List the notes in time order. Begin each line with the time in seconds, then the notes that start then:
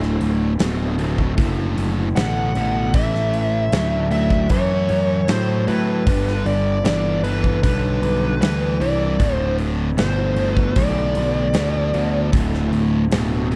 Already playing: D1 D2 A2 E4 F#4 A4 C5
0.02 snare
0.21 D1, open hi-hat
0.59 D1 D2 B2 E4 F#4 A4 C5, snare, open hi-hat
0.98 D2 B2, open hi-hat
1.18 kick
1.37 F#1 D2 A2, kick, open hi-hat
1.77 F#1, open hi-hat
2.16 A1 D2 B2 F#5, snare, open hi-hat
2.55 A1 D2 B2, open hi-hat
2.93 A1 A2 E3 C#4 E4 G4 B4 E5, kick, open hi-hat
3.15 snare
3.33 open hi-hat
3.72 D2 A2 F#3 C#4 E4 B4 G5, snare, open hi-hat
4.11 A2 F#3 E5, open hi-hat
4.30 kick
4.49 F#2 A2 E3 C#5, kick, open hi-hat
4.89 F#2, open hi-hat
5.28 A2 F#3 C5, snare, open hi-hat
5.67 A2 F#3 B4, open hi-hat
6.05 G1 G2 D3 D4 F4 A4 B4, kick, open hi-hat
6.27 snare
6.46 G1 D5, open hi-hat
6.83 G1 G2 E3 D4 A4 B4 D5 F5, snare, open hi-hat
7.24 G2 E3 B4, open hi-hat
7.44 kick
7.63 B1 G2 D3 B4, kick, open hi-hat
8.02 B1, open hi-hat
8.41 D2 G2 E3 B4, snare, open hi-hat
8.80 C2 G2 E3 D5, open hi-hat
9.19 D1 D2 A2 E4 F#4 A4 C5, kick, open hi-hat
9.35 C5
9.58 open hi-hat
9.97 G1 D2 B2 E4 F#4 A4 C5, snare, open hi-hat
10.36 D2 B2, open hi-hat
10.55 B4, kick
10.76 B1 D2 A2 D5, kick, open hi-hat
11.15 B1, open hi-hat
11.53 D2 B2, snare, open hi-hat
11.93 D2 B2, open hi-hat
12.32 D1 D2 A2 E4 F#4 A4 C5, kick, open hi-hat
12.54 snare
12.73 D1, open hi-hat
13.10 D1 D2 B2 E4 F#4 A4 C5, snare, open hi-hat
13.51 D2 B2, open hi-hat